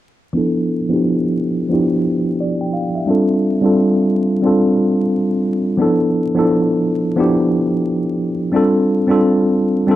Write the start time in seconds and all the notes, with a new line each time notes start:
0.33 F3 B3 D4 E4
0.38 A4
0.89 F3 B3 D4 E4
0.93 G4
1.69 F3 B3 D4 E4
1.74 G4
2.40 D5
2.61 G5
2.73 F5
2.95 E5
3.06 G3 C4 D4 F4
3.10 A4
3.61 G3 C4 D4 F4
3.66 A4
4.42 G3 C4 D4 F4
4.46 A4
5.77 F3 B3 D4 E4
5.82 A4
6.34 F3 B3 D4 E4
6.39 A4
7.16 F3 B3 D4 E4
7.20 G4
8.52 G3 C4 D4 F4
8.56 A4
9.07 G3 C4 D4 F4
9.11 A4
9.87 G3 C4 D4 F4
9.91 A4